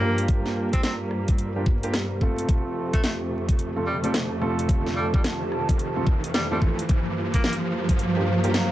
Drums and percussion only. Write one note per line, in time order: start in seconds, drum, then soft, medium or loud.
0.01 cross-stick soft
0.18 closed hi-hat medium
0.28 kick loud
0.28 closed hi-hat medium
0.46 snare soft
0.73 kick loud
0.73 closed hi-hat medium
0.83 snare loud
0.83 closed hi-hat medium
1.11 cross-stick soft
1.28 kick loud
1.28 closed hi-hat medium
1.38 closed hi-hat medium
1.66 kick loud
1.83 closed hi-hat medium
1.94 cross-stick soft
1.94 snare loud
1.94 closed hi-hat medium
2.21 kick medium
2.38 closed hi-hat medium
2.49 kick loud
2.49 closed hi-hat medium
2.93 kick loud
2.93 closed hi-hat medium
3.04 snare loud
3.04 closed hi-hat medium
3.49 kick loud
3.49 closed hi-hat medium
3.59 closed hi-hat medium
4.04 closed hi-hat medium
4.14 snare loud
4.14 closed hi-hat medium
4.42 cross-stick soft
4.59 closed hi-hat medium
4.69 kick loud
4.69 closed hi-hat medium
4.86 snare soft
5.14 kick loud
5.24 snare loud
5.24 closed hi-hat medium
5.52 cross-stick soft
5.69 kick loud
5.69 closed hi-hat medium
5.79 closed hi-hat soft
6.07 kick loud
6.24 closed hi-hat medium
6.34 cross-stick soft
6.34 snare loud
6.34 closed hi-hat medium
6.62 kick medium
6.79 closed hi-hat medium
6.89 kick loud
6.89 closed hi-hat medium
7.34 kick loud
7.34 closed hi-hat medium
7.44 snare loud
7.53 closed hi-hat medium
7.89 kick loud
7.89 closed hi-hat medium
7.99 closed hi-hat medium
8.44 closed hi-hat medium
8.54 snare loud
8.54 closed hi-hat medium